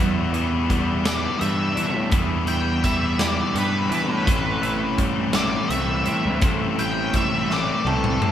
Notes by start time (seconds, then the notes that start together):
Already playing: E2 E3
0.00 G3 B3 E4
0.33 E3 G3 B3 E4, closed hi-hat
0.69 E3 G3 B3 E4, kick, closed hi-hat
1.05 E3 G3 B3 E4 D5, snare, closed hi-hat
1.39 G2 E3 G3 B3 E4 E5, closed hi-hat
1.75 E3 D4, closed hi-hat
1.94 A2
2.11 E2 E3 G3 B3 E4, kick, closed hi-hat
2.47 E3 G3 B3 E4 G5, closed hi-hat
2.83 E3 G3 B3 E4 E5, kick, closed hi-hat
3.19 E3 G3 B3 E4 D5, snare, closed hi-hat
3.54 G2 E3 G3 B3 E4 B4, closed hi-hat
3.91 E3 D4, closed hi-hat
4.09 A2
4.26 A1 A2 E3 A3 C4 E4, kick, closed hi-hat
4.62 A2 E3 A3 C4 E4, closed hi-hat
4.97 A2 E3 G3 A3 C4 E4, kick, closed hi-hat
5.33 A2 E3 A3 C4 E4 D5, snare, closed hi-hat
5.69 C2 A2 E3 G3 A3 C4 E4 E5, closed hi-hat
6.06 A2 C4, closed hi-hat
6.25 D2
6.42 A1 A2 E3 A3 C4 E4, kick, closed hi-hat
6.76 A2 E3 A3 C4 E4 G5, closed hi-hat
7.13 A2 E3 G3 A3 C4 E4 E5, kick, closed hi-hat
7.48 A2 E3 A3 C4 E4, snare
7.53 D5
7.84 C2 A2 E3 G3 A3 C4 E4 A4, high tom
8.04 mid tom
8.22 A2 C4, mid tom